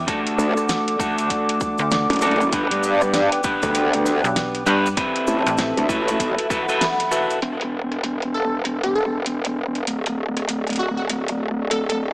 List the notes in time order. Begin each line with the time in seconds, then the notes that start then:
Already playing: D6
0.07 A3 D4 F#4 A4 D5 F#5, kick, closed hi-hat, cabasa
0.27 closed hi-hat
0.38 D2, cabasa
0.57 cross-stick, cabasa
0.69 snare, closed hi-hat, cabasa
0.88 closed hi-hat
0.99 A3 D4 F#4 A4, kick, cabasa
1.18 closed hi-hat, cabasa
1.30 kick, closed hi-hat, cabasa
1.49 closed hi-hat
1.60 kick, cabasa
1.78 D2, cabasa
1.91 snare, closed hi-hat, cabasa
2.10 F#1, closed hi-hat
2.13 closed hi-hat
2.16 closed hi-hat
2.19 closed hi-hat, cabasa
2.22 A3 D4 F#4 A4, closed hi-hat
2.27 closed hi-hat
2.31 closed hi-hat
2.36 closed hi-hat
2.41 cabasa
2.52 G1 B3 D4 G4 B4 G5, kick, closed hi-hat, cabasa
2.71 G2, closed hi-hat
2.83 cabasa
3.01 cross-stick, cabasa
3.14 snare, closed hi-hat, cabasa
3.32 closed hi-hat
3.44 B3 D4 G4 B4, kick, cabasa
3.62 D2, kick, closed hi-hat, cabasa
3.75 closed hi-hat, cabasa
3.93 closed hi-hat
4.05 snare, cabasa
4.24 B1, cabasa
4.36 snare, closed hi-hat, cabasa
4.55 closed hi-hat
4.66 G2 B3 D4 G4 B4, cabasa
4.86 cabasa
4.97 C4 E4 G4 A4 B4 E5 A5, kick, closed hi-hat, cabasa
5.16 closed hi-hat
5.27 A1, cabasa
5.46 A1, cross-stick, closed hi-hat, cabasa
5.57 snare, closed hi-hat, cabasa
5.77 D2, closed hi-hat
5.89 A1 E4 F#4 A4 B4, kick, cabasa
6.08 closed hi-hat, cabasa
6.20 B1 F#5 B5, kick, closed hi-hat, cabasa
6.38 closed hi-hat
6.50 E4 F#4 A4 B4, kick, cabasa
6.69 E4 F#4 A4 B4, cabasa
6.81 snare, closed hi-hat, cabasa
7.00 closed hi-hat
7.11 E4 F#4 A4 B4, cabasa
7.30 closed hi-hat, cabasa
7.42 E1 B3 E4 G4 D5, closed hi-hat
7.61 closed hi-hat
7.92 cross-stick, closed hi-hat
8.04 closed hi-hat
8.22 closed hi-hat
8.34 A4
8.65 closed hi-hat
8.83 G4, closed hi-hat
8.95 A4
9.26 closed hi-hat
9.45 closed hi-hat
9.75 closed hi-hat
9.87 D1 A3 D4 F#4, closed hi-hat
10.06 closed hi-hat
10.37 cross-stick, closed hi-hat
10.49 closed hi-hat
10.67 closed hi-hat
10.70 closed hi-hat
10.73 closed hi-hat
10.76 F#4, closed hi-hat
10.97 F#4
11.09 closed hi-hat
11.28 closed hi-hat
11.71 A4, closed hi-hat
11.89 A4, closed hi-hat